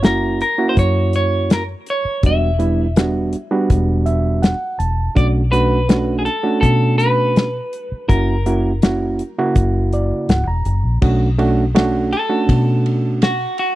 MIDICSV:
0, 0, Header, 1, 6, 480
1, 0, Start_track
1, 0, Key_signature, 2, "minor"
1, 0, Tempo, 732601
1, 1462, Time_signature, 4, 2, 24, 8
1, 9010, End_track
2, 0, Start_track
2, 0, Title_t, "Clean electric guitar"
2, 0, Program_c, 0, 27
2, 32, Note_on_c, 0, 70, 76
2, 250, Note_off_c, 0, 70, 0
2, 273, Note_on_c, 0, 70, 76
2, 450, Note_off_c, 0, 70, 0
2, 453, Note_on_c, 0, 72, 71
2, 500, Note_off_c, 0, 72, 0
2, 516, Note_on_c, 0, 73, 90
2, 750, Note_off_c, 0, 73, 0
2, 758, Note_on_c, 0, 73, 86
2, 997, Note_off_c, 0, 73, 0
2, 1004, Note_on_c, 0, 70, 74
2, 1066, Note_off_c, 0, 70, 0
2, 1246, Note_on_c, 0, 73, 79
2, 1480, Note_off_c, 0, 73, 0
2, 1483, Note_on_c, 0, 76, 81
2, 2538, Note_off_c, 0, 76, 0
2, 2538, Note_on_c, 0, 74, 81
2, 3127, Note_off_c, 0, 74, 0
2, 3385, Note_on_c, 0, 74, 96
2, 3450, Note_off_c, 0, 74, 0
2, 3614, Note_on_c, 0, 71, 86
2, 4051, Note_off_c, 0, 71, 0
2, 4054, Note_on_c, 0, 68, 57
2, 4094, Note_off_c, 0, 68, 0
2, 4097, Note_on_c, 0, 69, 80
2, 4322, Note_off_c, 0, 69, 0
2, 4330, Note_on_c, 0, 69, 85
2, 4571, Note_off_c, 0, 69, 0
2, 4574, Note_on_c, 0, 71, 98
2, 5296, Note_off_c, 0, 71, 0
2, 5299, Note_on_c, 0, 70, 80
2, 6713, Note_off_c, 0, 70, 0
2, 7945, Note_on_c, 0, 69, 88
2, 8640, Note_off_c, 0, 69, 0
2, 8669, Note_on_c, 0, 66, 73
2, 8897, Note_off_c, 0, 66, 0
2, 8907, Note_on_c, 0, 66, 84
2, 9010, Note_off_c, 0, 66, 0
2, 9010, End_track
3, 0, Start_track
3, 0, Title_t, "Reed electric piano"
3, 0, Program_c, 1, 4
3, 15, Note_on_c, 1, 58, 83
3, 16, Note_on_c, 1, 61, 69
3, 17, Note_on_c, 1, 64, 69
3, 20, Note_on_c, 1, 66, 84
3, 270, Note_off_c, 1, 58, 0
3, 271, Note_off_c, 1, 61, 0
3, 272, Note_off_c, 1, 64, 0
3, 273, Note_off_c, 1, 66, 0
3, 381, Note_on_c, 1, 58, 82
3, 382, Note_on_c, 1, 61, 70
3, 383, Note_on_c, 1, 64, 72
3, 386, Note_on_c, 1, 66, 90
3, 1053, Note_off_c, 1, 58, 0
3, 1053, Note_off_c, 1, 61, 0
3, 1054, Note_off_c, 1, 64, 0
3, 1055, Note_off_c, 1, 66, 0
3, 1462, Note_on_c, 1, 59, 57
3, 1463, Note_on_c, 1, 55, 64
3, 1464, Note_on_c, 1, 62, 66
3, 1466, Note_on_c, 1, 66, 71
3, 1631, Note_off_c, 1, 55, 0
3, 1631, Note_off_c, 1, 59, 0
3, 1632, Note_off_c, 1, 62, 0
3, 1632, Note_off_c, 1, 66, 0
3, 1696, Note_on_c, 1, 55, 80
3, 1699, Note_on_c, 1, 59, 64
3, 1699, Note_on_c, 1, 62, 64
3, 1701, Note_on_c, 1, 64, 82
3, 1868, Note_off_c, 1, 55, 0
3, 1869, Note_off_c, 1, 59, 0
3, 1869, Note_off_c, 1, 62, 0
3, 1870, Note_off_c, 1, 64, 0
3, 1942, Note_on_c, 1, 55, 73
3, 1945, Note_on_c, 1, 59, 68
3, 1945, Note_on_c, 1, 62, 69
3, 1947, Note_on_c, 1, 66, 83
3, 2194, Note_off_c, 1, 55, 0
3, 2196, Note_off_c, 1, 59, 0
3, 2196, Note_off_c, 1, 62, 0
3, 2196, Note_off_c, 1, 66, 0
3, 2299, Note_on_c, 1, 55, 100
3, 2301, Note_on_c, 1, 59, 80
3, 2301, Note_on_c, 1, 62, 83
3, 2302, Note_on_c, 1, 66, 94
3, 2658, Note_on_c, 1, 76, 71
3, 2883, Note_off_c, 1, 76, 0
3, 2899, Note_on_c, 1, 78, 67
3, 2972, Note_off_c, 1, 55, 0
3, 2973, Note_off_c, 1, 59, 0
3, 2973, Note_off_c, 1, 62, 0
3, 2974, Note_off_c, 1, 66, 0
3, 3124, Note_off_c, 1, 78, 0
3, 3137, Note_on_c, 1, 81, 70
3, 3363, Note_off_c, 1, 81, 0
3, 3376, Note_on_c, 1, 57, 66
3, 3376, Note_on_c, 1, 62, 61
3, 3377, Note_on_c, 1, 61, 62
3, 3378, Note_on_c, 1, 66, 73
3, 3547, Note_off_c, 1, 62, 0
3, 3548, Note_off_c, 1, 57, 0
3, 3548, Note_off_c, 1, 61, 0
3, 3548, Note_off_c, 1, 66, 0
3, 3619, Note_on_c, 1, 57, 72
3, 3621, Note_on_c, 1, 61, 66
3, 3621, Note_on_c, 1, 62, 70
3, 3623, Note_on_c, 1, 66, 85
3, 3789, Note_off_c, 1, 57, 0
3, 3790, Note_off_c, 1, 61, 0
3, 3790, Note_off_c, 1, 62, 0
3, 3791, Note_off_c, 1, 66, 0
3, 3857, Note_on_c, 1, 57, 79
3, 3859, Note_on_c, 1, 61, 73
3, 3860, Note_on_c, 1, 62, 73
3, 3860, Note_on_c, 1, 66, 84
3, 4111, Note_off_c, 1, 57, 0
3, 4112, Note_off_c, 1, 61, 0
3, 4113, Note_off_c, 1, 62, 0
3, 4113, Note_off_c, 1, 66, 0
3, 4215, Note_on_c, 1, 61, 77
3, 4217, Note_on_c, 1, 57, 75
3, 4217, Note_on_c, 1, 62, 72
3, 4217, Note_on_c, 1, 66, 88
3, 4889, Note_off_c, 1, 61, 0
3, 4890, Note_off_c, 1, 62, 0
3, 4891, Note_off_c, 1, 57, 0
3, 4891, Note_off_c, 1, 66, 0
3, 5297, Note_on_c, 1, 58, 64
3, 5297, Note_on_c, 1, 64, 66
3, 5298, Note_on_c, 1, 61, 68
3, 5300, Note_on_c, 1, 66, 80
3, 5467, Note_off_c, 1, 58, 0
3, 5467, Note_off_c, 1, 64, 0
3, 5468, Note_off_c, 1, 61, 0
3, 5469, Note_off_c, 1, 66, 0
3, 5543, Note_on_c, 1, 58, 77
3, 5545, Note_on_c, 1, 64, 69
3, 5545, Note_on_c, 1, 66, 82
3, 5546, Note_on_c, 1, 61, 70
3, 5710, Note_off_c, 1, 58, 0
3, 5711, Note_off_c, 1, 66, 0
3, 5712, Note_off_c, 1, 61, 0
3, 5712, Note_off_c, 1, 64, 0
3, 5786, Note_on_c, 1, 58, 69
3, 5787, Note_on_c, 1, 61, 70
3, 5790, Note_on_c, 1, 64, 66
3, 5790, Note_on_c, 1, 66, 89
3, 6035, Note_off_c, 1, 58, 0
3, 6036, Note_off_c, 1, 61, 0
3, 6037, Note_off_c, 1, 64, 0
3, 6037, Note_off_c, 1, 66, 0
3, 6148, Note_on_c, 1, 58, 88
3, 6149, Note_on_c, 1, 49, 85
3, 6150, Note_on_c, 1, 64, 75
3, 6150, Note_on_c, 1, 66, 104
3, 6509, Note_on_c, 1, 74, 73
3, 6729, Note_off_c, 1, 74, 0
3, 6745, Note_on_c, 1, 78, 65
3, 6815, Note_off_c, 1, 58, 0
3, 6816, Note_off_c, 1, 49, 0
3, 6816, Note_off_c, 1, 64, 0
3, 6816, Note_off_c, 1, 66, 0
3, 6855, Note_off_c, 1, 78, 0
3, 6864, Note_on_c, 1, 82, 64
3, 7197, Note_off_c, 1, 82, 0
3, 7218, Note_on_c, 1, 61, 80
3, 7219, Note_on_c, 1, 57, 77
3, 7221, Note_on_c, 1, 66, 88
3, 7222, Note_on_c, 1, 62, 70
3, 7387, Note_off_c, 1, 57, 0
3, 7387, Note_off_c, 1, 61, 0
3, 7389, Note_off_c, 1, 62, 0
3, 7389, Note_off_c, 1, 66, 0
3, 7458, Note_on_c, 1, 57, 91
3, 7459, Note_on_c, 1, 61, 85
3, 7462, Note_on_c, 1, 62, 85
3, 7462, Note_on_c, 1, 66, 101
3, 7627, Note_off_c, 1, 57, 0
3, 7627, Note_off_c, 1, 61, 0
3, 7629, Note_off_c, 1, 62, 0
3, 7629, Note_off_c, 1, 66, 0
3, 7696, Note_on_c, 1, 57, 93
3, 7700, Note_on_c, 1, 62, 82
3, 7700, Note_on_c, 1, 66, 107
3, 7701, Note_on_c, 1, 61, 86
3, 7949, Note_off_c, 1, 57, 0
3, 7951, Note_off_c, 1, 62, 0
3, 7951, Note_off_c, 1, 66, 0
3, 7952, Note_off_c, 1, 61, 0
3, 8055, Note_on_c, 1, 61, 70
3, 8056, Note_on_c, 1, 57, 74
3, 8057, Note_on_c, 1, 62, 73
3, 8057, Note_on_c, 1, 66, 86
3, 8727, Note_off_c, 1, 61, 0
3, 8728, Note_off_c, 1, 57, 0
3, 8728, Note_off_c, 1, 66, 0
3, 8729, Note_off_c, 1, 62, 0
3, 9010, End_track
4, 0, Start_track
4, 0, Title_t, "Fingered electric bass"
4, 0, Program_c, 2, 33
4, 0, Note_on_c, 2, 30, 90
4, 267, Note_off_c, 2, 30, 0
4, 505, Note_on_c, 2, 42, 86
4, 1139, Note_off_c, 2, 42, 0
4, 1464, Note_on_c, 2, 28, 95
4, 2188, Note_off_c, 2, 28, 0
4, 2425, Note_on_c, 2, 28, 96
4, 2967, Note_off_c, 2, 28, 0
4, 3142, Note_on_c, 2, 28, 82
4, 3323, Note_off_c, 2, 28, 0
4, 3384, Note_on_c, 2, 35, 99
4, 4108, Note_off_c, 2, 35, 0
4, 4342, Note_on_c, 2, 47, 86
4, 4976, Note_off_c, 2, 47, 0
4, 5302, Note_on_c, 2, 30, 83
4, 6026, Note_off_c, 2, 30, 0
4, 6261, Note_on_c, 2, 30, 85
4, 6623, Note_off_c, 2, 30, 0
4, 6741, Note_on_c, 2, 25, 73
4, 6849, Note_off_c, 2, 25, 0
4, 6861, Note_on_c, 2, 28, 78
4, 6969, Note_off_c, 2, 28, 0
4, 6982, Note_on_c, 2, 30, 83
4, 7090, Note_off_c, 2, 30, 0
4, 7101, Note_on_c, 2, 34, 69
4, 7209, Note_off_c, 2, 34, 0
4, 7221, Note_on_c, 2, 35, 89
4, 7944, Note_off_c, 2, 35, 0
4, 8182, Note_on_c, 2, 47, 92
4, 8814, Note_off_c, 2, 47, 0
4, 9010, End_track
5, 0, Start_track
5, 0, Title_t, "Muted fingered electric bass strokes"
5, 1343, Note_on_c, 9, 29, 31
5, 1408, Note_off_c, 9, 29, 0
5, 5187, Note_on_c, 9, 29, 31
5, 5253, Note_off_c, 9, 29, 0
5, 9010, End_track
6, 0, Start_track
6, 0, Title_t, "Drums"
6, 23, Note_on_c, 9, 42, 75
6, 29, Note_on_c, 9, 38, 113
6, 88, Note_off_c, 9, 42, 0
6, 95, Note_off_c, 9, 38, 0
6, 266, Note_on_c, 9, 42, 55
6, 332, Note_off_c, 9, 42, 0
6, 504, Note_on_c, 9, 42, 81
6, 505, Note_on_c, 9, 36, 82
6, 569, Note_off_c, 9, 42, 0
6, 571, Note_off_c, 9, 36, 0
6, 742, Note_on_c, 9, 42, 62
6, 807, Note_off_c, 9, 42, 0
6, 984, Note_on_c, 9, 42, 79
6, 990, Note_on_c, 9, 38, 98
6, 1049, Note_off_c, 9, 42, 0
6, 1056, Note_off_c, 9, 38, 0
6, 1221, Note_on_c, 9, 42, 61
6, 1287, Note_off_c, 9, 42, 0
6, 1461, Note_on_c, 9, 42, 74
6, 1464, Note_on_c, 9, 36, 93
6, 1527, Note_off_c, 9, 42, 0
6, 1530, Note_off_c, 9, 36, 0
6, 1702, Note_on_c, 9, 42, 68
6, 1767, Note_off_c, 9, 42, 0
6, 1942, Note_on_c, 9, 42, 87
6, 1948, Note_on_c, 9, 38, 117
6, 2007, Note_off_c, 9, 42, 0
6, 2014, Note_off_c, 9, 38, 0
6, 2180, Note_on_c, 9, 42, 65
6, 2246, Note_off_c, 9, 42, 0
6, 2423, Note_on_c, 9, 42, 82
6, 2425, Note_on_c, 9, 36, 76
6, 2489, Note_off_c, 9, 42, 0
6, 2490, Note_off_c, 9, 36, 0
6, 2662, Note_on_c, 9, 42, 60
6, 2728, Note_off_c, 9, 42, 0
6, 2903, Note_on_c, 9, 42, 71
6, 2909, Note_on_c, 9, 38, 99
6, 2968, Note_off_c, 9, 42, 0
6, 2975, Note_off_c, 9, 38, 0
6, 3144, Note_on_c, 9, 42, 57
6, 3210, Note_off_c, 9, 42, 0
6, 3383, Note_on_c, 9, 42, 68
6, 3384, Note_on_c, 9, 36, 91
6, 3449, Note_off_c, 9, 42, 0
6, 3450, Note_off_c, 9, 36, 0
6, 3622, Note_on_c, 9, 42, 61
6, 3688, Note_off_c, 9, 42, 0
6, 3860, Note_on_c, 9, 42, 80
6, 3866, Note_on_c, 9, 38, 110
6, 3925, Note_off_c, 9, 42, 0
6, 3932, Note_off_c, 9, 38, 0
6, 4101, Note_on_c, 9, 42, 51
6, 4167, Note_off_c, 9, 42, 0
6, 4343, Note_on_c, 9, 36, 79
6, 4343, Note_on_c, 9, 42, 74
6, 4408, Note_off_c, 9, 36, 0
6, 4409, Note_off_c, 9, 42, 0
6, 4583, Note_on_c, 9, 42, 58
6, 4649, Note_off_c, 9, 42, 0
6, 4824, Note_on_c, 9, 42, 67
6, 4831, Note_on_c, 9, 38, 98
6, 4890, Note_off_c, 9, 42, 0
6, 4896, Note_off_c, 9, 38, 0
6, 5064, Note_on_c, 9, 42, 54
6, 5130, Note_off_c, 9, 42, 0
6, 5303, Note_on_c, 9, 36, 98
6, 5305, Note_on_c, 9, 42, 76
6, 5369, Note_off_c, 9, 36, 0
6, 5371, Note_off_c, 9, 42, 0
6, 5544, Note_on_c, 9, 42, 63
6, 5610, Note_off_c, 9, 42, 0
6, 5780, Note_on_c, 9, 42, 85
6, 5787, Note_on_c, 9, 38, 109
6, 5846, Note_off_c, 9, 42, 0
6, 5852, Note_off_c, 9, 38, 0
6, 6022, Note_on_c, 9, 42, 58
6, 6088, Note_off_c, 9, 42, 0
6, 6261, Note_on_c, 9, 42, 83
6, 6263, Note_on_c, 9, 36, 82
6, 6326, Note_off_c, 9, 42, 0
6, 6328, Note_off_c, 9, 36, 0
6, 6504, Note_on_c, 9, 42, 61
6, 6569, Note_off_c, 9, 42, 0
6, 6742, Note_on_c, 9, 42, 72
6, 6749, Note_on_c, 9, 38, 105
6, 6808, Note_off_c, 9, 42, 0
6, 6814, Note_off_c, 9, 38, 0
6, 6980, Note_on_c, 9, 42, 62
6, 7045, Note_off_c, 9, 42, 0
6, 7220, Note_on_c, 9, 49, 78
6, 7222, Note_on_c, 9, 36, 100
6, 7285, Note_off_c, 9, 49, 0
6, 7287, Note_off_c, 9, 36, 0
6, 7462, Note_on_c, 9, 51, 60
6, 7528, Note_off_c, 9, 51, 0
6, 7704, Note_on_c, 9, 51, 82
6, 7711, Note_on_c, 9, 38, 110
6, 7770, Note_off_c, 9, 51, 0
6, 7776, Note_off_c, 9, 38, 0
6, 7945, Note_on_c, 9, 51, 60
6, 8011, Note_off_c, 9, 51, 0
6, 8183, Note_on_c, 9, 36, 88
6, 8185, Note_on_c, 9, 51, 78
6, 8249, Note_off_c, 9, 36, 0
6, 8251, Note_off_c, 9, 51, 0
6, 8425, Note_on_c, 9, 51, 59
6, 8490, Note_off_c, 9, 51, 0
6, 8660, Note_on_c, 9, 51, 76
6, 8667, Note_on_c, 9, 38, 101
6, 8726, Note_off_c, 9, 51, 0
6, 8732, Note_off_c, 9, 38, 0
6, 8897, Note_on_c, 9, 51, 61
6, 8963, Note_off_c, 9, 51, 0
6, 9010, End_track
0, 0, End_of_file